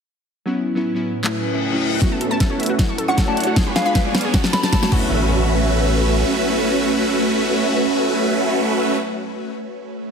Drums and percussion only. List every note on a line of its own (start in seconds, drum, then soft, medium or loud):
1.24 clap medium
2.02 kick medium
2.02 snare soft
2.02 closed hi-hat medium
2.21 closed hi-hat medium
2.40 kick medium
2.40 snare soft
2.40 closed hi-hat medium
2.60 closed hi-hat soft
2.63 closed hi-hat medium
2.66 closed hi-hat medium
2.79 kick medium
2.79 snare medium
2.79 closed hi-hat medium
2.98 closed hi-hat medium
3.18 kick medium
3.18 snare medium
3.18 closed hi-hat medium
3.37 closed hi-hat medium
3.40 closed hi-hat medium
3.44 closed hi-hat medium
3.56 kick loud
3.56 snare medium
3.56 closed hi-hat medium
3.76 snare medium
3.76 closed hi-hat medium
3.95 kick loud
3.95 snare medium
3.95 closed hi-hat medium
4.15 snare medium
4.15 closed hi-hat medium
4.18 closed hi-hat medium
4.21 closed hi-hat medium
4.34 kick medium
4.34 snare medium
4.34 closed hi-hat medium
4.44 snare medium
4.53 snare medium
4.53 closed hi-hat medium
4.63 snare medium
4.73 kick loud
4.73 snare loud
4.73 closed hi-hat medium
4.83 snare medium
4.92 kick loud
4.92 crash medium